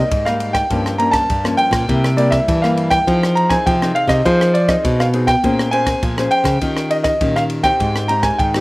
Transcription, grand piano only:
0, 0, Header, 1, 2, 480
1, 0, Start_track
1, 0, Key_signature, -3, "minor"
1, 0, Tempo, 591133
1, 573, Time_signature, 4, 2, 24, 8
1, 6988, End_track
2, 0, Start_track
2, 0, Title_t, "Grand piano"
2, 0, Program_c, 0, 0
2, 0, Note_on_c, 0, 75, 83
2, 206, Note_on_c, 0, 77, 81
2, 212, Note_off_c, 0, 75, 0
2, 432, Note_on_c, 0, 79, 92
2, 457, Note_off_c, 0, 77, 0
2, 777, Note_off_c, 0, 79, 0
2, 799, Note_on_c, 0, 82, 98
2, 905, Note_on_c, 0, 81, 95
2, 918, Note_off_c, 0, 82, 0
2, 1253, Note_off_c, 0, 81, 0
2, 1278, Note_on_c, 0, 79, 108
2, 1734, Note_off_c, 0, 79, 0
2, 1762, Note_on_c, 0, 74, 92
2, 1872, Note_on_c, 0, 76, 82
2, 1892, Note_off_c, 0, 74, 0
2, 2106, Note_off_c, 0, 76, 0
2, 2127, Note_on_c, 0, 77, 78
2, 2354, Note_off_c, 0, 77, 0
2, 2358, Note_on_c, 0, 79, 112
2, 2701, Note_off_c, 0, 79, 0
2, 2724, Note_on_c, 0, 82, 98
2, 2838, Note_on_c, 0, 80, 85
2, 2853, Note_off_c, 0, 82, 0
2, 2957, Note_off_c, 0, 80, 0
2, 2973, Note_on_c, 0, 79, 94
2, 3208, Note_on_c, 0, 77, 96
2, 3221, Note_off_c, 0, 79, 0
2, 3318, Note_on_c, 0, 75, 89
2, 3335, Note_off_c, 0, 77, 0
2, 3437, Note_off_c, 0, 75, 0
2, 3455, Note_on_c, 0, 72, 86
2, 3678, Note_off_c, 0, 72, 0
2, 3686, Note_on_c, 0, 74, 92
2, 3803, Note_on_c, 0, 75, 78
2, 3814, Note_off_c, 0, 74, 0
2, 4056, Note_off_c, 0, 75, 0
2, 4058, Note_on_c, 0, 77, 76
2, 4112, Note_off_c, 0, 77, 0
2, 4280, Note_on_c, 0, 79, 101
2, 4639, Note_on_c, 0, 80, 101
2, 4658, Note_off_c, 0, 79, 0
2, 5094, Note_off_c, 0, 80, 0
2, 5122, Note_on_c, 0, 79, 109
2, 5576, Note_off_c, 0, 79, 0
2, 5607, Note_on_c, 0, 75, 87
2, 5647, Note_off_c, 0, 75, 0
2, 5713, Note_on_c, 0, 75, 78
2, 5946, Note_off_c, 0, 75, 0
2, 5975, Note_on_c, 0, 77, 83
2, 6029, Note_off_c, 0, 77, 0
2, 6199, Note_on_c, 0, 79, 108
2, 6563, Note_on_c, 0, 82, 97
2, 6577, Note_off_c, 0, 79, 0
2, 6680, Note_on_c, 0, 80, 84
2, 6692, Note_off_c, 0, 82, 0
2, 6808, Note_on_c, 0, 79, 81
2, 6810, Note_off_c, 0, 80, 0
2, 6988, Note_off_c, 0, 79, 0
2, 6988, End_track
0, 0, End_of_file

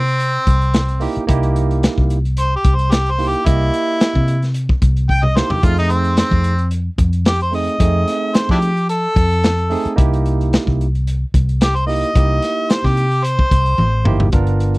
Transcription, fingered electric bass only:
0, 0, Header, 1, 3, 480
1, 0, Start_track
1, 0, Tempo, 542986
1, 1139, Time_signature, 4, 2, 24, 8
1, 13070, End_track
2, 0, Start_track
2, 0, Title_t, "Fingered electric bass"
2, 0, Program_c, 0, 33
2, 0, Note_on_c, 0, 48, 81
2, 327, Note_off_c, 0, 48, 0
2, 418, Note_on_c, 0, 36, 78
2, 934, Note_off_c, 0, 36, 0
2, 1133, Note_on_c, 0, 36, 109
2, 1652, Note_off_c, 0, 36, 0
2, 1749, Note_on_c, 0, 36, 85
2, 2251, Note_off_c, 0, 36, 0
2, 2340, Note_on_c, 0, 36, 77
2, 2951, Note_off_c, 0, 36, 0
2, 3061, Note_on_c, 0, 36, 92
2, 3264, Note_off_c, 0, 36, 0
2, 3670, Note_on_c, 0, 48, 82
2, 4171, Note_off_c, 0, 48, 0
2, 4263, Note_on_c, 0, 36, 88
2, 4777, Note_off_c, 0, 36, 0
2, 4981, Note_on_c, 0, 41, 97
2, 5496, Note_off_c, 0, 41, 0
2, 5578, Note_on_c, 0, 41, 78
2, 6084, Note_off_c, 0, 41, 0
2, 6171, Note_on_c, 0, 41, 73
2, 6785, Note_off_c, 0, 41, 0
2, 6895, Note_on_c, 0, 41, 100
2, 7100, Note_off_c, 0, 41, 0
2, 7509, Note_on_c, 0, 53, 81
2, 8011, Note_off_c, 0, 53, 0
2, 8099, Note_on_c, 0, 41, 89
2, 8615, Note_off_c, 0, 41, 0
2, 8824, Note_on_c, 0, 36, 105
2, 9338, Note_off_c, 0, 36, 0
2, 9431, Note_on_c, 0, 36, 79
2, 9932, Note_off_c, 0, 36, 0
2, 10024, Note_on_c, 0, 36, 84
2, 10634, Note_off_c, 0, 36, 0
2, 10747, Note_on_c, 0, 36, 89
2, 10948, Note_off_c, 0, 36, 0
2, 11353, Note_on_c, 0, 48, 82
2, 11854, Note_off_c, 0, 48, 0
2, 11944, Note_on_c, 0, 36, 81
2, 12147, Note_off_c, 0, 36, 0
2, 12185, Note_on_c, 0, 33, 81
2, 12399, Note_off_c, 0, 33, 0
2, 12421, Note_on_c, 0, 31, 81
2, 12637, Note_off_c, 0, 31, 0
2, 12662, Note_on_c, 0, 31, 107
2, 13070, Note_off_c, 0, 31, 0
2, 13070, End_track
3, 0, Start_track
3, 0, Title_t, "Muted fingered electric bass strokes"
3, 1032, Note_on_c, 9, 29, 36
3, 1121, Note_off_c, 9, 29, 0
3, 4866, Note_on_c, 9, 29, 37
3, 4954, Note_off_c, 9, 29, 0
3, 8712, Note_on_c, 9, 29, 40
3, 8800, Note_off_c, 9, 29, 0
3, 13070, End_track
0, 0, End_of_file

